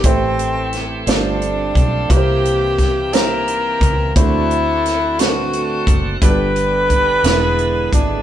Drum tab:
HH |xxxxxx|xxxxxx|xxxxxx|xxxxxx|
SD |--oo--|--oo--|--oo--|---o--|
BD |o----o|o-o--o|o----o|o-o--o|